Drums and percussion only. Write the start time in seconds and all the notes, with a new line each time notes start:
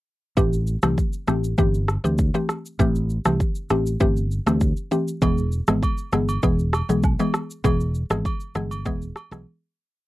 0.37 kick, shaker
0.53 shaker
0.67 shaker
0.83 cross-stick, shaker
0.98 kick, shaker
1.13 shaker
1.27 cross-stick, shaker
1.44 shaker
1.58 kick, shaker
1.74 shaker
1.88 cross-stick, shaker
2.05 shaker
2.18 kick, shaker
2.35 shaker
2.49 cross-stick, shaker
2.66 shaker
2.80 kick, shaker
2.96 shaker
3.10 shaker
3.25 cross-stick, shaker
3.40 kick, shaker
3.55 shaker
3.70 cross-stick, shaker
3.86 shaker
4.00 kick, shaker
4.17 shaker
4.31 shaker
4.47 cross-stick, shaker
4.61 kick, shaker
4.77 shaker
4.92 shaker
5.08 shaker
5.22 kick, high agogo, shaker
5.38 shaker
5.52 shaker
5.67 cross-stick, shaker
5.83 kick, high agogo, shaker
5.98 shaker
6.12 cross-stick, shaker
6.29 high agogo, shaker
6.43 kick, shaker
6.59 shaker
6.73 cross-stick, high agogo, shaker
6.90 shaker
7.03 kick, low woodblock, shaker
7.19 high agogo, shaker
7.34 cross-stick, shaker
7.51 shaker
7.64 kick, high agogo, shaker
7.81 shaker
7.95 shaker
8.10 cross-stick, shaker
8.25 kick, high agogo, shaker
8.40 shaker
8.55 cross-stick, shaker
8.71 high agogo, shaker
8.86 kick, shaker
9.02 shaker
9.16 cross-stick, high agogo, shaker
9.32 cross-stick, shaker